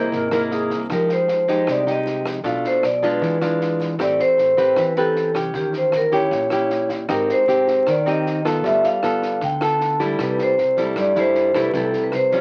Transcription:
Already playing: C3 A#3 E4 G#4 C5 D#5
0.12 G#1 C3 A#4, kick, snare
0.31 A#3 E4 G#4, cross-stick, snare
0.51 G#4, snare
0.70 C2, kick, snare
0.90 F2 F3 G#3 D#4 G4 A#4, kick, cross-stick, snare
1.09 C5, snare
1.28 F2, snare
1.48 G#3 D#4 G4, kick, snare
1.67 C2 C3 D5, kick, cross-stick, snare
1.87 G#3 D#4 G4 D#5, snare
2.06 snare
2.25 F2, kick, cross-stick, snare
2.44 B1 B2 A3 D4 F4 F5, kick, snare
2.64 C5, snare
2.83 B1 D5, cross-stick, snare
3.02 G#3 D4 F4 B4, kick, snare
3.21 E2 E3, kick, snare
3.42 G#3 D4 F4, cross-stick, snare
3.61 snare
3.80 E2, kick, snare
3.99 A1 A3 C4 G4 D5, kick, cross-stick, snare
4.19 C5, snare
4.38 A1, snare
4.57 C4 G4 B4, kick, snare
4.76 E2 E3 B4, kick, cross-stick, snare
4.96 C4 G4 A4 B4, snare
5.16 snare
5.34 C2 C#4 G4, kick, cross-stick, snare
5.54 D#2 D#3 G4, kick, snare
5.73 snare
5.77 C5
5.92 D#2, cross-stick, snare
5.96 A#4
6.12 C#4 E4 G4 C#5, kick, snare
6.31 A#1 A#2, kick, snare
6.50 C#4 E4 G4, cross-stick, snare
6.70 snare
6.89 D#2, kick, snare
7.09 G#1 G#3 C4 D#4 G4, kick, cross-stick, snare
7.13 A#4
7.29 C5, snare
7.47 G#1 C4 D#4 G4, snare
7.67 kick, snare
7.86 D#2 D#3 D5, kick, cross-stick, snare
8.06 C4 D#4 G4 D#5, snare
8.26 snare
8.45 G#1 B3 F4 A4, kick, cross-stick, snare
8.64 G1 G3 E5, kick, snare
8.84 F5, snare
9.02 G1 B3 F4 A4, cross-stick, snare
9.22 kick, snare
9.41 D2 D3 G5, kick, snare
9.61 B3 F4 A4 A5, cross-stick, snare
9.80 snare
9.99 G2 G3 A3 E4, kick, snare
10.19 C2 C3, kick, cross-stick, snare
10.23 B4
10.38 snare
10.43 C5
10.57 C2, snare
10.77 G3 A3 E4, kick, snare
10.96 G2 D5, kick, cross-stick, snare
11.15 G3 A3 E4 C5, snare
11.35 snare
11.54 C2 G3 A3 E4, kick, cross-stick, snare
11.58 B4
11.74 C2 C3 G3 A3 E4 A4, kick, snare
11.93 snare
12.04 B4
12.12 C2 C5, cross-stick, snare
12.31 G3 C#4 F4 C#5, kick, snare

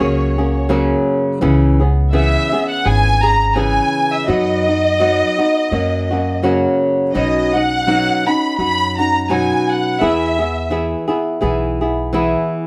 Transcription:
Already playing: C#5
0.00 C#2 F#3 A#3 C#4 G#4
0.38 F#3 A#3 C#4 G#4
0.69 F#2 C#3 F#3 A#3 C#4 G#4
1.41 C#2 C#3 E3 B3 C#4 G#4
1.80 B3 C#4 G#4
2.12 C#3 E3 B3 C#4 G#4 E5
2.52 B3 C#4 G#4
2.70 F#5
2.84 G#1 E3 B3 C#4 G#4 G#5
3.23 B3 C#4 G#4 A#5
3.50 A#5
3.55 C#3 E3 B3 C#4 G#4 G#5
4.13 E5
4.28 F#2 F#3 B3 D#4 F#4 D#5
4.68 B3 D#4 F#4
5.00 F#3 B3 D#4 F#4
5.38 B3 D#4 F#4
5.71 F#2 F#3 A#3 C#4 F#4
6.11 F#3 A#3 C#4 F#4
6.43 F#2 C#3 F#3 A#3 C#4 F#4
7.14 B1 B2 F#3 C#4 D#4 F#4 D#5
7.53 C#4 D#4 F#4 F#5
7.87 B2 F#3 C#4 D#4 F#4
8.26 C#4 D#4 F#4 B5
8.58 F#2 F#3 C#4 D#4 F#4 B5
8.98 C#4 D#4 F#4 A#5
9.24 A#5
9.29 B2 F#3 C#4 D#4 F#4 G#5
9.69 F#5
10.00 E2 E3 B3 E4 G#4 E5
10.39 B3 E4 G#4
10.70 E3 B3 E4 G#4
11.08 B3 E4 G#4
11.41 B1 E3 B3 E4 G#4
11.81 B3 E4 G#4
12.13 E3 B3 E4 G#4

